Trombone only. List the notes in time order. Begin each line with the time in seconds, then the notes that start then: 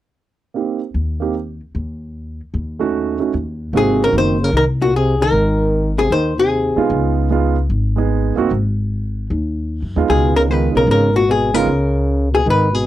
3.76 C3
4.03 C#3
4.14 D#3
4.41 C#3
4.55 D#3
4.83 A#2
4.94 C3
5.19 D#3
6.00 C3
6.11 D#3
6.37 C3
10.10 B2
10.36 C#3
10.49 D#3
10.73 C#3
10.88 C#3
11.13 A#2
11.27 B2
11.54 C#3
12.32 B2
12.45 D#3
12.72 B2